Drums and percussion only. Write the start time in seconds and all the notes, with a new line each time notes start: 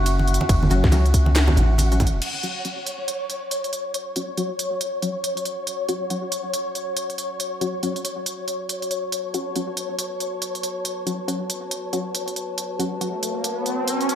0.06 closed hi-hat, ride
0.19 muted conga
0.27 closed hi-hat
0.34 closed hi-hat
0.41 muted conga
0.49 kick, closed hi-hat, ride
0.63 high conga
0.70 closed hi-hat, muted conga
0.84 kick, snare
0.92 closed hi-hat, ride, muted conga
1.06 closed hi-hat
1.14 kick, closed hi-hat
1.26 muted conga
1.36 snare, clap, closed hi-hat, ride
1.48 muted conga, high conga
1.57 closed hi-hat, low conga
1.78 closed hi-hat, ride, muted conga
1.92 closed hi-hat
2.00 kick, closed hi-hat, muted conga
2.07 closed hi-hat
2.22 closed hi-hat, crash
2.43 closed hi-hat
2.65 closed hi-hat
2.86 closed hi-hat
3.08 closed hi-hat
3.30 closed hi-hat
3.51 closed hi-hat
3.64 closed hi-hat
3.73 closed hi-hat
3.94 closed hi-hat
4.16 closed hi-hat
4.37 closed hi-hat
4.59 closed hi-hat
4.81 closed hi-hat
5.02 closed hi-hat
5.24 closed hi-hat
5.37 closed hi-hat
5.45 closed hi-hat
5.67 closed hi-hat
5.89 closed hi-hat
6.10 closed hi-hat
6.32 closed hi-hat
6.54 closed hi-hat
6.75 closed hi-hat
6.97 closed hi-hat
7.10 closed hi-hat
7.18 closed hi-hat
7.40 closed hi-hat
7.61 closed hi-hat
7.83 closed hi-hat
7.96 closed hi-hat
8.05 closed hi-hat
8.26 closed hi-hat
8.48 closed hi-hat
8.69 closed hi-hat
8.82 closed hi-hat
8.91 closed hi-hat
9.12 closed hi-hat
9.34 closed hi-hat
9.56 closed hi-hat
9.77 closed hi-hat
9.99 closed hi-hat
10.20 closed hi-hat
10.42 closed hi-hat
10.55 closed hi-hat
10.63 closed hi-hat
10.85 closed hi-hat
11.07 closed hi-hat
11.28 closed hi-hat
11.50 closed hi-hat
11.71 closed hi-hat
11.93 closed hi-hat
12.15 closed hi-hat
12.28 closed hi-hat
12.36 closed hi-hat
12.58 closed hi-hat
12.80 closed hi-hat
13.01 closed hi-hat
13.23 closed hi-hat
13.44 closed hi-hat
13.66 closed hi-hat
13.88 closed hi-hat
14.01 closed hi-hat
14.09 closed hi-hat